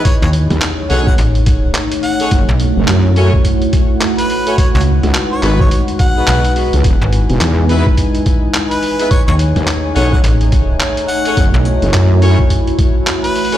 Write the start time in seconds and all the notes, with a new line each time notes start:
Already playing: D#4 D#5 G#5
0.05 A3 D#4 G#4 C#5, kick, closed hi-hat
0.22 D#2 C#5
0.33 A3, closed hi-hat
0.37 C#5
0.50 D#2, snare, closed hi-hat
0.62 clap, closed hi-hat
0.90 B1 C#4 D#4 G#4 A4 C#5 F#5, open hi-hat
1.07 F#5, kick
1.18 A1, closed hi-hat
1.35 closed hi-hat
1.46 kick, closed hi-hat
1.75 clap, closed hi-hat
1.92 closed hi-hat
2.03 F#5, open hi-hat
2.20 C#4 D#4 G#4 A4 C#5, closed hi-hat
2.31 F#1 E4 F#4 C#5, kick, closed hi-hat
2.49 B1
2.53 F#5
2.60 closed hi-hat
2.77 F#1
2.88 F#2, clap, closed hi-hat
3.16 C#4 E4 F#4 A4 C#5, open hi-hat
3.34 kick
3.45 kick, closed hi-hat
3.62 closed hi-hat
3.73 kick, closed hi-hat
4.01 clap, closed hi-hat
4.18 B4, closed hi-hat
4.30 open hi-hat
4.47 C#4 E4 F#4 A4 C#5, closed hi-hat
4.58 G#3 D#4 F#4 B4 C#5, kick, closed hi-hat
4.75 C#2 C#5
4.81 B4, closed hi-hat
5.03 C#2, snare, closed hi-hat
5.14 clap, closed hi-hat
5.32 C#5
5.43 G#1 B3 D#4 F#4 G#4 B4, clap, open hi-hat
5.60 C#5 G#5, kick
5.71 C#5, closed hi-hat
5.88 closed hi-hat
5.99 F#5, kick, closed hi-hat
6.17 B3 D#4 F#4 G#4 B4
6.27 B1, clap, closed hi-hat
6.44 closed hi-hat
6.56 B3 D#4 F#4 G#4 B4, open hi-hat
6.73 C#2, closed hi-hat
6.84 E1 E3 G#3 D#4 E4, kick, closed hi-hat
7.02 G#1
7.13 closed hi-hat
7.30 E1, closed hi-hat
7.37 D#5, clap, closed hi-hat
7.41 E2
7.69 B3 D#4 E4 G#4 B4, open hi-hat
7.87 kick
7.97 kick, closed hi-hat
8.15 closed hi-hat
8.26 kick, closed hi-hat
8.54 clap, closed hi-hat
8.71 B4, closed hi-hat
8.83 open hi-hat
8.99 B3 D#4 E4 G#4 B4, closed hi-hat
9.10 A3 D#4 G#4 C#5, kick, closed hi-hat
9.19 A3
9.27 D#2 C#5
9.39 closed hi-hat
9.54 D#2 C#5, snare, closed hi-hat
9.67 clap, closed hi-hat
9.95 B1 C#4 D#4 G#4 A4 C#5 F#5, open hi-hat
10.12 F#5, kick
10.24 A1, closed hi-hat
10.41 closed hi-hat
10.52 kick, closed hi-hat
10.80 clap, closed hi-hat
10.97 closed hi-hat
11.08 F#5, open hi-hat
11.25 C#4 D#4 G#4 A4 C#5, closed hi-hat
11.37 F#1 E4 F#4, kick, closed hi-hat
11.54 B1
11.65 closed hi-hat
11.82 F#1, closed hi-hat
11.94 F#2, clap, closed hi-hat
12.22 C#4 E4 F#4 A4 C#5, open hi-hat
12.39 F#5, kick
12.50 kick, closed hi-hat
12.67 closed hi-hat
12.79 kick, closed hi-hat
13.07 clap, closed hi-hat
13.24 B4, closed hi-hat
13.35 open hi-hat
13.45 open hi-hat
13.52 C#4 E4 F#4 A4 C#5, closed hi-hat, open hi-hat